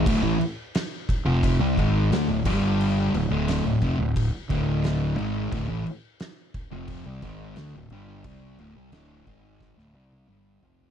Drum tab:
CC |x-x-x-x-x-x-x-x-|x-x-x-x-x-x-x-x-|x-x-x-x-x-x-x-x-|x-x-x-x---------|
SD |----o-------o---|----o-------o---|----o-------o---|----o---oo------|
T1 |----------------|----------------|----------------|-----------o----|
T2 |----------------|----------------|----------------|------------o---|
FT |----------------|----------------|----------------|--------------oo|
BD |o-----o-o-o---o-|------o-o-o-----|o-----o-o-o-----|o-----o-o-------|